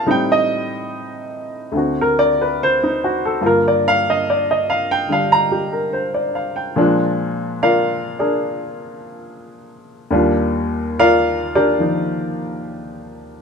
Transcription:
0.06 1.74 A2 medium
0.06 1.74 G3 soft
0.06 1.74 C4 medium
0.06 1.75 D#4 medium
0.11 0.36 G5 medium
0.32 0.50 D#5 medium
1.72 3.41 D2 medium
1.72 3.40 D3 soft
1.72 3.42 C4 soft
1.77 3.03 F#4 medium
2.01 2.30 A#4 medium
2.19 2.38 D5 medium
2.41 2.56 B4 medium
2.63 2.89 C5 medium
2.83 3.13 D#4 medium
3.04 3.22 F#4 medium
3.25 3.40 A4 medium
3.41 6.77 G2 medium
3.41 5.07 D3 soft
3.41 6.78 A#3 medium
3.41 6.78 F4 medium
3.46 3.72 A#4 medium
3.68 3.97 D5 medium
3.88 4.06 F5 loud
4.10 4.24 D#5 medium
4.30 4.56 D5 medium
4.51 4.81 D#5 medium
4.70 4.89 F5 medium
4.91 5.06 G5 medium
5.09 6.77 D3 soft
5.09 6.78 G3 soft
5.09 6.76 D4 soft
5.09 5.39 F5 medium
5.32 5.51 A#5 medium
5.51 5.77 G4 medium
5.73 6.02 A#4 soft
5.93 6.33 C5 medium
6.14 6.51 D5 medium
6.35 6.61 F5 medium
6.56 6.85 G5 medium
6.76 10.12 A#2 medium
6.76 10.13 F3 medium
6.76 10.13 G#3 medium
6.76 8.19 D4 medium
7.63 8.14 F4 medium
7.63 8.14 A#4 medium
7.63 8.14 D5 medium
7.63 8.14 F5 medium
8.19 8.65 D4 soft
8.19 8.64 G#4 soft
8.19 8.64 A#4 soft
8.19 8.64 D5 medium
10.11 13.42 D#2 medium
10.11 13.42 G3 medium
10.11 11.54 D4 medium
10.11 10.98 F4 medium
10.99 11.50 F4 medium
10.99 11.50 A#4 medium
10.99 11.50 D5 medium
10.99 11.50 F5 loud
11.55 12.00 D4 medium
11.55 12.00 G4 medium
11.55 12.00 A#4 medium
11.55 12.00 D5 medium
11.79 13.42 D#3 soft
11.79 13.42 F3 soft
11.79 13.42 D#4 soft

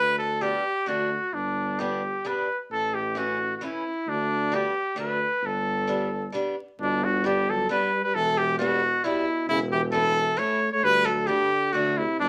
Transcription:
0.00 0.56 D2 medium
0.00 0.18 B4 loud
0.19 0.43 A4 medium
0.41 0.62 G3 medium
0.41 0.62 B3 medium
0.41 0.63 D4 medium
0.41 0.90 G4 medium
0.86 1.17 D2 medium
0.86 1.08 F#3 medium
0.86 1.08 A3 soft
0.86 1.09 D4 medium
0.86 1.36 F#4 medium
1.33 2.23 G1 medium
1.33 1.82 D4 medium
1.79 2.00 G3 soft
1.79 2.00 B3 soft
1.79 2.01 D4 medium
1.79 2.29 G4 medium
2.25 2.46 G3 medium
2.25 2.46 B3 soft
2.25 2.47 D4 medium
2.25 2.61 B4 medium
2.70 3.59 A1 medium
2.70 2.96 A4 medium
2.94 3.19 G4 medium
3.15 3.36 E3 medium
3.15 3.37 A3 soft
3.15 3.37 C#4 medium
3.15 3.56 F#4 medium
3.56 3.66 F#4 medium
3.61 3.82 E3 medium
3.61 3.82 A3 medium
3.61 3.83 C#4 medium
3.61 4.10 E4 medium
4.07 4.65 D2 medium
4.07 4.56 D4 medium
4.52 4.72 G3 medium
4.52 4.72 B3 medium
4.52 4.73 D4 medium
4.52 4.98 G4 medium
4.96 5.26 D2 medium
4.96 5.17 F#3 medium
4.96 5.17 A3 medium
4.96 5.18 D4 medium
4.96 5.47 B4 medium
5.42 6.31 G1 medium
5.46 6.35 A4 medium
5.87 6.08 G3 medium
5.87 6.08 B3 medium
5.87 6.09 D4 medium
6.32 6.54 G3 medium
6.32 6.54 B3 medium
6.32 6.55 D4 medium
6.79 7.67 G1 medium
6.79 7.05 B2 medium
6.79 7.06 D4 medium
7.04 7.27 D3 medium
7.04 7.27 F#4 medium
7.24 7.50 D3 medium
7.24 7.45 G3 medium
7.24 7.45 B3 medium
7.24 7.46 D4 medium
7.24 7.52 G4 medium
7.48 7.70 F#3 medium
7.48 7.70 A4 medium
7.69 7.90 G3 medium
7.69 8.01 G3 medium
7.69 7.90 B3 medium
7.69 7.90 D4 medium
7.69 8.01 B4 medium
8.04 8.17 G3 medium
8.04 8.16 B4 medium
8.14 9.01 E1 loud
8.14 8.38 E3 medium
8.14 8.39 A4 loud
8.38 8.58 E3 medium
8.38 8.58 G4 medium
8.59 9.04 B2 medium
8.59 8.79 G3 medium
8.59 8.79 B3 medium
8.59 8.80 E4 medium
8.59 9.06 F#4 loud
9.04 9.48 B2 medium
9.04 9.24 G3 medium
9.04 9.24 B3 medium
9.04 9.48 E4 medium
9.04 9.25 E4 medium
9.48 10.35 E1 loud
9.48 9.59 C#3 loud
9.48 9.59 E4 loud
9.72 9.81 E3 medium
9.72 9.82 G4 medium
9.92 10.40 E3 medium
9.92 10.12 A3 medium
9.92 10.13 C#4 medium
9.92 10.14 E4 medium
9.92 10.40 A4 loud
10.37 10.57 A3 medium
10.37 10.72 A3 medium
10.37 10.58 C#4 medium
10.37 10.58 E4 medium
10.37 10.71 C#5 medium
10.72 10.86 A3 medium
10.72 10.86 C#5 loud
10.82 11.42 D2 loud
10.82 11.09 G3 medium
10.82 11.07 B4 loud
11.05 11.32 F#3 medium
11.05 11.28 A4 loud
11.27 11.75 D3 medium
11.27 11.48 G3 medium
11.27 11.49 B3 medium
11.27 11.49 D4 medium
11.27 11.74 G4 loud
11.73 12.03 D2 loud
11.73 12.01 D3 medium
11.73 11.94 F#3 medium
11.73 11.95 A3 medium
11.73 11.95 D4 medium
11.73 11.99 F#4 medium
11.98 12.21 C3 medium
11.98 12.19 E4 medium
12.19 12.29 G1 medium
12.19 12.29 B2 medium
12.19 12.29 D4 loud

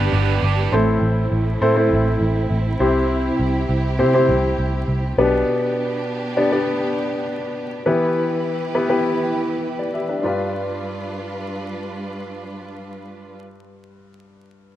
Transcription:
0.00 0.74 G2 medium
0.00 0.68 B3 medium
0.00 0.74 B3 medium
0.00 0.12 D4 soft
0.00 0.68 D4 medium
0.00 0.74 D4 medium
0.00 0.13 G4 medium
0.00 0.68 G4 medium
0.00 0.74 G4 medium
0.00 0.13 B4 medium
0.00 0.74 B4 medium
0.00 0.74 D5 loud
0.12 0.37 G1 medium
0.12 0.42 B3 medium
0.12 0.43 D4 medium
0.12 0.43 G4 medium
0.12 0.41 B4 medium
0.42 0.67 G1 loud
0.42 0.74 D4 medium
0.42 0.73 G4 medium
0.42 0.72 B4 medium
0.72 0.97 A1 medium
0.72 1.58 A2 medium
0.72 2.79 A3 medium
0.72 1.42 C4 medium
0.72 5.14 C4 medium
0.72 1.42 E4 medium
0.72 5.14 E4 medium
0.72 1.42 A4 medium
0.72 1.42 C5 medium
1.02 1.26 A1 medium
1.32 1.56 A1 medium
1.62 1.93 A2 medium
1.62 1.73 C4 medium
1.62 1.73 E4 medium
1.62 1.73 A4 medium
1.62 1.73 C5 medium
1.76 2.69 C4 medium
1.76 2.69 E4 medium
1.76 2.69 A4 medium
1.76 2.69 C5 medium
1.91 2.16 A1 medium
2.21 2.45 A1 medium
2.50 2.75 A1 medium
2.80 3.29 C2 medium
2.80 3.66 C3 medium
2.80 5.16 C3 medium
2.80 3.75 C4 medium
2.80 3.75 E4 medium
2.80 5.16 G4 medium
2.80 3.76 G4 medium
2.80 3.75 C5 medium
3.40 3.64 C2 medium
3.69 4.01 C2 medium
3.99 4.30 C3 medium
3.99 4.11 C4 medium
3.99 4.11 E4 medium
3.99 4.11 G4 medium
3.99 4.11 C5 medium
4.14 5.07 C4 medium
4.14 5.07 E4 medium
4.14 5.07 G4 medium
4.14 5.07 C5 medium
4.29 4.53 C2 medium
4.58 4.83 C2 medium
4.88 5.12 C2 medium
5.18 5.42 B1 medium
5.18 6.03 B2 medium
5.18 6.13 B3 medium
5.18 7.83 B3 medium
5.18 6.13 D4 medium
5.18 7.83 D4 medium
5.18 6.13 G4 medium
5.18 7.83 G4 medium
5.18 6.13 B4 medium
6.37 6.49 B3 medium
6.37 6.49 D4 medium
6.37 6.49 G4 medium
6.37 6.49 D5 medium
6.52 7.45 B3 medium
6.52 7.45 D4 medium
6.52 7.44 G4 medium
6.52 7.45 D5 medium
7.86 10.21 E3 medium
7.86 8.71 E3 medium
7.86 8.55 B3 medium
7.86 10.21 E4 medium
7.86 8.55 E4 medium
7.86 10.21 G4 medium
7.86 8.55 G4 medium
7.86 10.21 B4 medium
7.86 8.55 B4 medium
8.75 8.86 B3 medium
8.75 8.86 E4 medium
8.75 8.86 G4 medium
8.75 8.87 B4 medium
8.90 9.82 B3 medium
8.90 9.64 E4 medium
8.90 9.64 G4 medium
8.90 9.64 B4 medium
9.79 9.93 D5 soft
9.94 10.08 G4 soft
9.94 10.08 E5 soft
10.09 10.20 D4 soft
10.09 10.24 B4 soft
10.22 14.08 G2 medium
10.22 13.38 G3 medium
10.22 14.06 D4 medium
10.22 13.38 D4 soft
10.22 14.07 F4 medium
10.22 13.38 F4 soft
10.22 14.08 G4 medium
10.22 13.38 B4 medium
10.26 14.08 B4 medium

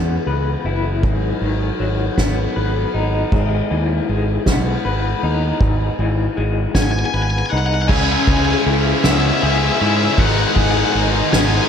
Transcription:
0.00 0.17 E2 medium
0.00 0.66 C#3 medium
0.00 1.02 E3 medium
0.00 1.79 G#3 medium
0.00 2.17 B3 medium
0.00 7.86 B3 soft
0.00 1.02 C#4 soft
0.00 7.86 G#4 medium
0.27 0.55 C#2 medium
0.27 2.56 B4 medium
0.27 ride medium
0.64 1.03 F#1 medium
0.64 1.04 E4 medium
0.64 ride medium
1.03 1.31 G#1 medium
1.03 3.32 G#2 medium
1.03 3.30 F#3 medium
1.03 7.86 D#4 soft
1.03 kick medium
1.03 ride medium
1.41 1.69 G#1 medium
1.41 3.33 D#3 medium
1.41 ride medium
1.79 2.08 G#1 medium
1.79 3.32 F#3 medium
1.79 ride medium
2.18 2.46 G#1 medium
2.18 4.46 B3 medium
2.18 kick medium
2.18 snare loud
2.18 ride medium
2.56 2.84 G#1 medium
2.56 4.85 B4 medium
2.56 ride medium
2.94 3.22 G#1 medium
2.94 3.74 D#4 medium
2.94 ride medium
3.32 3.60 G#1 medium
3.32 5.23 G#2 medium
3.32 7.86 G#3 medium
3.32 kick loud
3.32 crash medium
3.70 3.99 D#2 medium
3.70 5.99 E3 medium
3.70 ride medium
4.08 4.37 G#1 medium
4.08 6.00 G#3 medium
4.08 ride medium
4.46 4.74 B1 medium
4.46 6.37 B3 medium
4.46 kick medium
4.46 snare loud
4.46 ride medium
4.85 5.13 G#1 medium
4.85 6.75 B4 medium
4.85 ride medium
5.23 5.51 D#2 medium
5.23 7.14 D#4 medium
5.23 ride medium
5.61 5.88 G#1 medium
5.61 7.52 G#2 medium
5.61 kick loud
5.99 6.27 G#1 medium
5.99 7.89 E3 medium
6.37 6.65 G#1 medium
6.37 7.90 G#3 medium
6.75 7.03 G#1 medium
6.75 7.89 B3 medium
6.75 6.82 G#5 loud
6.75 kick medium
6.75 snare loud
6.82 6.90 G#5 medium
6.92 6.99 G#5 loud
6.99 7.05 G#5 medium
7.06 7.13 G#5 loud
7.14 7.41 G#1 medium
7.14 7.90 B4 medium
7.14 7.22 G#5 medium
7.22 7.30 G#5 loud
7.30 7.38 G#5 medium
7.39 7.45 G#5 loud
7.46 7.50 G#5 medium
7.50 7.89 C2 medium
7.50 7.90 D#4 medium
7.50 7.58 F#5 medium
7.58 7.66 F#5 medium
7.66 7.74 F#5 medium
7.74 7.82 F#5 medium
7.82 7.88 F#5 medium
7.88 8.15 C#2 loud
7.88 9.02 C#3 medium
7.88 9.80 C#3 medium
7.88 9.04 G#3 medium
7.88 9.04 C#4 medium
7.88 9.04 E4 loud
7.88 11.69 G#4 medium
7.88 10.16 C#5 medium
7.88 10.15 E5 medium
7.88 7.96 G#5 medium
7.88 11.69 B5 medium
7.88 kick loud
7.88 crash loud
7.96 8.04 G#5 medium
8.04 8.12 G#5 medium
8.13 8.19 G#5 medium
8.20 8.28 G#5 medium
8.27 8.54 C#2 medium
8.27 9.42 G#4 medium
8.27 8.37 G#5 medium
8.27 kick medium
8.27 ride medium
8.37 8.44 G#5 medium
8.45 8.53 G#5 medium
8.54 8.62 G#5 medium
8.66 8.92 C#2 medium
8.66 9.79 E4 medium
8.66 ride medium
9.03 9.30 C#2 medium
9.03 9.40 C#3 medium
9.03 9.42 G#3 loud
9.03 11.32 B3 medium
9.03 9.41 C#4 loud
9.03 9.42 E4 medium
9.03 9.12 E5 medium
9.03 snare loud
9.03 ride loud
9.12 9.18 E5 medium
9.18 9.26 E5 medium
9.27 9.33 E5 medium
9.34 9.41 E5 medium
9.41 9.69 C#2 medium
9.41 9.79 C#3 medium
9.41 9.80 G#3 medium
9.41 9.80 C#4 medium
9.41 9.80 E4 medium
9.41 10.56 G#4 medium
9.41 9.50 E5 medium
9.41 ride medium
9.50 9.57 E5 medium
9.58 9.64 E5 medium
9.65 9.72 E5 medium
9.72 9.80 E5 medium
9.80 10.07 G#2 medium
9.80 10.16 C#3 medium
9.80 10.18 G#3 medium
9.80 10.16 C#4 loud
9.80 10.18 E4 medium
9.80 10.17 E4 medium
9.80 9.89 E5 medium
9.80 ride medium
9.89 9.96 E5 medium
9.97 10.04 E5 medium
10.05 10.13 E5 medium
10.13 10.21 E5 medium
10.17 10.44 G#1 loud
10.17 11.33 G#2 medium
10.17 11.69 G#2 medium
10.17 11.32 D#3 medium
10.17 11.34 G#3 loud
10.17 11.34 B3 loud
10.17 11.35 D#4 loud
10.17 11.69 D#5 medium
10.17 10.25 F#5 loud
10.17 11.69 F#5 medium
10.17 kick loud
10.17 ride loud
10.26 10.33 F#5 medium
10.34 10.41 F#5 medium
10.42 10.48 F#5 medium
10.48 10.55 F#5 loud
10.55 10.82 G#1 medium
10.55 11.69 G#4 medium
10.55 10.63 F#5 medium
10.55 kick medium
10.55 ride medium
10.64 10.70 F#5 medium
10.71 10.77 F#5 medium
10.78 10.85 F#5 medium
10.85 10.92 F#5 medium
10.92 11.21 G#1 medium
10.92 11.69 D#4 medium
10.92 11.00 F#5 medium
10.92 ride medium
11.33 11.59 G#1 medium
11.33 11.69 G#2 loud
11.33 11.69 D#3 medium
11.33 11.69 G#3 loud
11.33 11.69 B3 medium
11.33 11.69 B3 loud
11.33 11.69 D#4 loud
11.33 11.40 G#5 loud
11.33 snare loud
11.33 ride loud
11.41 11.49 G#5 medium
11.50 11.56 G#5 loud
11.56 11.64 G#5 medium
11.65 11.69 G#5 loud

